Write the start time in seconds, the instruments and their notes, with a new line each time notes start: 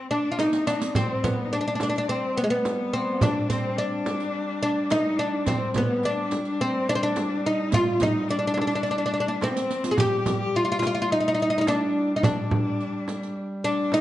Already playing: cello C4, oud C4
0.11 cello D4, oud D4
0.32 oud F4
0.39 cello D#4, oud D#4, riq, darbuka tek, frame drum
0.46 cello D4
0.53 cello D#4, riq, darbuka ka
0.67 oud D4, riq, darbuka tek
0.81 riq, darbuka ka
0.94 duduk G3, cello C4, oud C4, riq, frame drum, darbuka dum
1.24 cello B3, oud B3, riq, darbuka dum, frame drum
1.45 cello D#4
1.52 cello D4, oud D4, riq, darbuka ka
1.61 oud D4
1.68 oud D4
1.75 oud D4
1.80 oud D4, riq, darbuka tek, frame drum
1.90 oud D4
1.96 oud D4, riq
2.08 cello C4, oud C4
2.37 cello B3, oud B3, riq, darbuka ka
2.44 oud G#3
2.50 cello B3, oud B3
2.65 riq, darbuka tek, frame drum
2.80 darbuka ka
2.93 oud C4
3.08 darbuka ka
3.21 cello D4, oud D4, riq, darbuka dum, frame drum
3.50 cello C4, oud C4, riq, darbuka dum
3.77 cello D4, oud D4, riq
4.06 riq, frame drum
4.20 riq
4.34 darbuka ka
4.63 oud D4, riq
4.90 cello D#4, oud D#4, riq, darbuka tek, frame drum
5.05 darbuka ka
5.17 cello D4, oud D4
5.46 duduk G3, cello C4, oud C4, riq, darbuka dum, frame drum
5.74 cello B3, oud B3, riq, darbuka dum, frame drum
6.03 cello D4, oud D4, riq, darbuka ka
6.31 riq, frame drum
6.45 cello D4, riq
6.61 cello C4, oud C4
6.88 cello D4, oud D4
6.95 oud C4
7.03 oud D4, cello D4
7.16 riq, darbuka tek, frame drum
7.31 darbuka ka
7.46 cello D#4, oud D#4
7.59 darbuka ka
7.72 cello F4, oud F4, riq, darbuka dum, frame drum
8.00 cello D#4, oud D#4, riq, darbuka dum, frame drum
8.29 cello D4, oud D4, riq, darbuka ka
8.39 oud D4
8.47 oud D4
8.54 oud D4, frame drum
8.58 oud D4, darbuka tek
8.67 oud D4, riq
8.72 oud D4, darbuka ka
8.83 oud D4, riq
8.91 oud D4
8.98 oud D4
9.06 oud D4
9.14 oud D4
9.20 oud D4
9.28 oud D4
9.41 cello C4, oud C4, riq, darbuka tek, frame drum
9.49 cello B3
9.56 cello C4, riq, darbuka ka
9.71 riq
9.84 cello F4, riq, darbuka ka
9.91 oud G#4
9.97 duduk G3, cello G4, oud G4, riq, frame drum, darbuka dum
10.26 riq, frame drum, darbuka dum
10.40 cello G4
10.55 cello F4, oud F4, riq, darbuka ka
10.65 oud F4
10.72 oud F4
10.79 oud F4, riq, darbuka tek, frame drum
10.87 oud F4
10.95 oud F4, riq
11.02 oud F4
11.11 cello D#4, oud D#4, darbuka ka
11.20 oud D#4
11.28 oud D#4
11.35 oud D#4
11.40 oud D#4, riq
11.50 oud D#4
11.58 oud D#4
11.67 cello D4, oud D4, riq, darbuka tek, frame drum
11.81 darbuka ka
12.10 darbuka ka
12.16 oud D#4, cello D#4
12.23 oud D4, cello D4, riq, frame drum, darbuka dum
12.51 frame drum, darbuka dum
12.81 riq, darbuka ka
13.08 riq, frame drum
13.23 riq
13.37 darbuka ka
13.64 oud D4, cello D4, riq
13.92 cello D#4, oud D#4, riq, darbuka tek, frame drum